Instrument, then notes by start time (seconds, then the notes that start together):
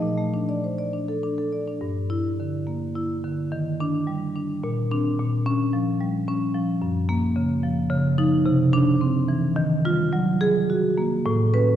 marimba
0.03 A#2
0.18 A3
0.34 D4
0.49 D5
0.64 C5
0.78 D5
0.93 D4
1.08 A4
1.23 D4
1.38 A4
1.52 D5
1.68 D4
1.81 G2
2.10 E4
2.40 D3
2.67 A#3
2.96 E4
3.24 D3
3.52 D#3
3.80 D4
4.07 G3
4.36 D4
4.64 A#2
4.91 C4 D4
5.19 A#2
5.46 C#4
5.73 F3
6.00 G3
6.28 C#4
6.55 F3
6.82 F#2
7.09 A#3
7.36 C#3
7.63 F3
7.90 C#3
8.18 F3 D#4
8.46 C3
8.73 D4
9.01 C4
9.28 E3
9.56 D#3
9.85 G3 F4
10.13 F#3
10.41 G#4
10.70 F#4
10.98 A#3
11.26 A2
11.54 C#4 B4